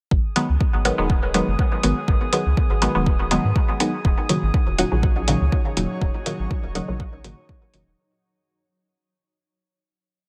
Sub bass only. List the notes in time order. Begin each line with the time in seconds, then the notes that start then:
0.11 G#1
0.49 C#2
0.74 G#1
0.98 D#1
1.47 F#1
1.84 G#1
2.08 G#1
2.46 C#2
2.70 G#1
2.95 D#1
3.44 G#2
4.05 D#1
4.43 G#1
4.67 D#1
4.92 A#1
5.41 C#2
5.77 D#1
6.01 D#1
6.39 G#1
6.64 D#1
6.88 A#1
7.24 G#1
7.74 F#1
7.87 D#1